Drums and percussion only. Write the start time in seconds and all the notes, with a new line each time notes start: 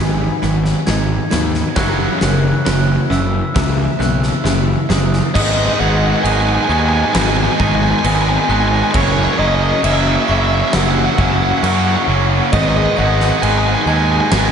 0.42 snare
0.65 snare
0.87 snare
1.31 snare
1.54 snare
1.76 kick, snare
2.21 snare
2.66 snare
3.11 snare
3.56 kick, snare
4.01 snare
4.23 snare
4.46 snare
4.90 snare
5.13 snare
5.35 kick, crash
6.25 crash
7.15 snare, crash
7.60 kick
8.04 crash
8.94 kick, crash
9.84 crash
10.73 snare, crash
11.18 kick
11.64 crash
12.53 kick, crash
13.21 snare
13.43 crash
14.32 snare, crash